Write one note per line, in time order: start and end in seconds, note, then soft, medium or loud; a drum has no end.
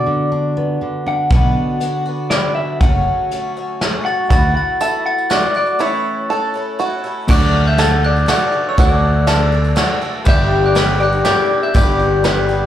0.00 0.56 B3 soft
0.00 0.31 D4 soft
0.00 1.28 F#4 medium
0.00 0.78 D5 medium
0.06 0.80 D3 medium
0.32 1.05 D4 soft
0.57 1.29 B3 soft
0.81 2.81 D3 medium
1.06 1.28 D4 medium
1.06 1.31 F#5 medium
1.30 1.54 B1 medium
1.30 1.81 B2 medium
1.30 1.80 F#3 medium
1.30 1.80 B3 medium
1.30 1.81 D4 medium
1.30 1.82 F#4 medium
1.30 2.30 F#5 loud
1.30 kick loud
1.30 closed hi-hat medium
1.80 2.06 F#3 medium
1.80 2.06 B3 medium
1.80 2.06 D4 medium
1.80 2.04 F#4 medium
1.80 closed hi-hat medium
2.06 2.31 B3 soft
2.06 2.31 D4 soft
2.06 2.31 F#4 soft
2.30 2.82 F#3 medium
2.30 2.82 B3 medium
2.30 2.82 D4 medium
2.30 2.83 F#4 medium
2.30 2.54 D5 medium
2.30 snare medium
2.30 closed hi-hat medium
2.55 2.80 E5 medium
2.81 3.04 F#1 medium
2.81 3.31 F#2 medium
2.81 3.31 C#3 medium
2.81 3.32 F#3 medium
2.81 3.32 A3 medium
2.81 3.32 C#4 medium
2.81 3.34 F#4 medium
2.81 3.52 F#5 medium
2.81 kick loud
2.81 closed hi-hat medium
3.31 3.57 F#3 medium
3.31 3.57 A3 medium
3.31 3.56 C#4 medium
3.31 3.55 F#4 medium
3.31 closed hi-hat medium
3.57 3.81 F#3 soft
3.57 3.82 A3 soft
3.57 3.82 C#4 soft
3.57 3.81 F#4 medium
3.81 4.06 F#3 medium
3.81 4.07 A3 medium
3.81 4.06 C#4 medium
3.81 4.05 F#4 medium
3.81 snare medium
3.81 closed hi-hat medium
4.05 4.31 F#3 soft
4.05 4.31 A3 soft
4.05 4.31 C#4 soft
4.05 4.31 F#4 soft
4.05 4.28 F#5 loud
4.05 4.29 A6 medium
4.29 4.54 D2 medium
4.29 4.81 D3 medium
4.29 4.80 E3 medium
4.29 4.81 A3 medium
4.29 4.82 E4 medium
4.29 4.79 F#4 medium
4.29 4.82 F#4 medium
4.29 4.53 F#5 loud
4.29 4.55 A6 medium
4.29 kick loud
4.29 closed hi-hat medium
4.29 tambourine medium
4.55 4.81 F#5 loud
4.55 4.79 A6 medium
4.80 5.28 E3 medium
4.80 5.30 A3 medium
4.80 5.30 E4 medium
4.80 5.31 F#4 medium
4.80 5.29 A4 medium
4.80 5.05 E5 loud
4.80 5.05 A6 medium
4.80 closed hi-hat medium
4.80 tambourine medium
5.06 5.31 F#5 medium
5.06 5.29 A6 medium
5.18 tambourine soft
5.29 5.55 E3 medium
5.29 5.55 A3 medium
5.29 5.55 E4 medium
5.29 5.79 F#4 medium
5.29 5.53 F#4 medium
5.29 5.55 D5 medium
5.29 5.53 F#6 medium
5.29 snare medium
5.29 closed hi-hat medium
5.29 tambourine medium
5.42 tambourine soft
5.54 5.79 A3 soft
5.54 5.79 E4 soft
5.54 5.80 F#4 soft
5.54 5.81 D5 loud
5.54 5.79 F#6 medium
5.54 tambourine soft
5.66 tambourine soft
5.79 6.29 A2 medium
5.79 6.29 E3 medium
5.79 6.29 A3 medium
5.79 6.30 C#4 loud
5.79 6.29 E4 medium
5.79 6.30 E4 medium
5.79 6.30 A4 medium
5.79 7.01 C#5 medium
5.79 7.01 E6 medium
6.30 6.55 A3 medium
6.30 6.54 C#4 medium
6.30 6.54 E4 medium
6.30 6.79 A4 medium
6.30 6.53 A4 medium
6.54 6.78 A3 medium
6.54 6.79 C#4 medium
6.54 6.79 E4 soft
6.54 6.79 A4 medium
6.79 7.04 A3 medium
6.79 7.04 C#4 medium
6.79 7.03 E4 medium
6.79 7.28 F#4 medium
6.79 7.03 A4 medium
7.04 7.28 A3 medium
7.04 7.29 C#4 medium
7.04 7.29 E4 medium
7.04 7.28 A4 medium
7.27 8.74 D2 medium
7.27 8.24 D2 medium
7.27 8.77 D3 medium
7.27 8.74 D3 medium
7.27 10.22 F#3 medium
7.27 7.76 F#3 medium
7.27 10.22 A3 medium
7.27 7.78 A3 medium
7.27 10.22 D4 medium
7.27 7.79 D4 medium
7.27 7.78 F#4 medium
7.27 7.79 A4 medium
7.27 10.23 A4 medium
7.27 7.68 D5 loud
7.27 10.23 D5 medium
7.27 7.64 F#6 medium
7.27 kick loud
7.27 crash loud
7.27 tambourine medium
7.67 7.79 E5 medium
7.67 7.78 G6 medium
7.78 8.03 F#3 medium
7.78 8.03 A3 medium
7.78 8.03 D4 medium
7.78 8.27 A4 medium
7.78 8.02 A4 medium
7.78 8.02 A6 medium
7.78 snare medium
7.78 ride medium
7.78 tambourine medium
7.82 8.06 F#5 loud
7.91 tambourine soft
8.03 8.26 A3 soft
8.03 8.27 D4 medium
8.03 8.28 A4 soft
8.03 8.28 D5 medium
8.03 8.27 F#6 medium
8.16 tambourine soft
8.26 8.52 F#3 medium
8.26 8.53 A3 medium
8.26 8.52 D4 medium
8.26 8.77 F#4 medium
8.26 8.51 A4 medium
8.26 snare medium
8.26 ride medium
8.26 tambourine medium
8.31 8.68 D5 medium
8.31 8.64 F#6 medium
8.41 tambourine soft
8.52 8.78 A3 soft
8.52 8.78 D4 soft
8.52 8.77 A4 medium
8.69 8.80 C#5 medium
8.69 8.79 E6 medium
8.78 9.73 D2 medium
8.78 10.23 D2 medium
8.78 9.27 D3 medium
8.78 10.23 D3 medium
8.78 9.26 F#3 medium
8.78 9.26 A3 medium
8.78 9.28 D4 medium
8.78 9.27 F#4 loud
8.78 9.28 A4 medium
8.78 9.99 D5 loud
8.78 9.99 F#6 medium
8.78 kick loud
8.78 ride medium
8.78 tambourine medium
9.27 9.52 F#3 medium
9.27 9.52 A3 medium
9.27 9.53 D4 medium
9.27 9.76 A4 medium
9.27 9.51 A4 medium
9.27 snare medium
9.27 ride medium
9.27 tambourine medium
9.39 tambourine soft
9.52 9.75 A3 soft
9.52 9.77 D4 medium
9.52 9.77 A4 medium
9.64 tambourine soft
9.76 10.01 F#3 medium
9.76 10.01 A3 medium
9.76 10.01 D4 medium
9.76 10.25 F#4 medium
9.76 10.00 A4 medium
9.76 snare medium
9.76 ride medium
9.76 tambourine medium
9.88 tambourine soft
10.02 10.26 A3 medium
10.02 10.26 D4 soft
10.02 10.26 A4 medium
10.24 11.71 G1 medium
10.24 11.22 G1 loud
10.24 10.75 G2 medium
10.24 11.71 G2 medium
10.24 10.76 D3 medium
10.24 12.66 G3 medium
10.24 10.74 G3 medium
10.24 12.66 B3 medium
10.24 10.75 B3 medium
10.24 12.66 D4 medium
10.24 10.76 D4 medium
10.24 10.75 G4 medium
10.24 10.76 G4 medium
10.24 12.66 B4 medium
10.24 12.66 D5 medium
10.24 kick loud
10.24 ride medium
10.24 tambourine loud
10.29 10.65 E5 loud
10.29 10.63 G6 medium
10.66 10.77 D5 medium
10.66 10.76 F#6 medium
10.75 11.00 G3 medium
10.75 11.00 B3 medium
10.75 10.99 D4 medium
10.75 10.99 G4 medium
10.75 11.25 B4 medium
10.75 11.00 B4 loud
10.75 11.01 D6 medium
10.75 snare medium
10.75 ride medium
10.75 tambourine medium
10.88 tambourine soft
11.00 11.24 G3 soft
11.00 11.24 B3 soft
11.00 11.26 D4 soft
11.00 11.25 G4 medium
11.00 11.24 D5 medium
11.00 11.25 F#6 medium
11.12 tambourine soft
11.25 11.74 G3 medium
11.25 11.75 B3 medium
11.25 11.76 D4 medium
11.25 11.74 G4 medium
11.25 11.75 G4 medium
11.25 11.63 D5 loud
11.25 11.61 G6 medium
11.25 snare medium
11.25 ride medium
11.25 tambourine loud
11.38 tambourine soft
11.63 11.75 E5 medium
11.63 11.73 G6 medium
11.74 12.66 G1 medium
11.74 12.24 G2 medium
11.74 12.66 G2 medium
11.74 12.25 D3 medium
11.74 12.22 G3 medium
11.74 12.24 B3 medium
11.74 12.26 D4 medium
11.74 12.24 G4 medium
11.74 12.25 G4 medium
11.74 12.66 D5 medium
11.74 12.66 G6 medium
11.74 kick loud
11.74 ride medium
11.74 tambourine medium
11.99 tambourine soft
12.24 12.49 G3 medium
12.24 12.50 B3 medium
12.24 12.49 D4 medium
12.24 12.48 G4 medium
12.24 12.66 B4 medium
12.24 snare medium
12.24 ride medium
12.24 tambourine medium
12.49 12.66 G3 medium
12.49 12.66 B3 soft
12.49 12.66 D4 soft
12.49 12.66 G4 medium
12.49 tambourine soft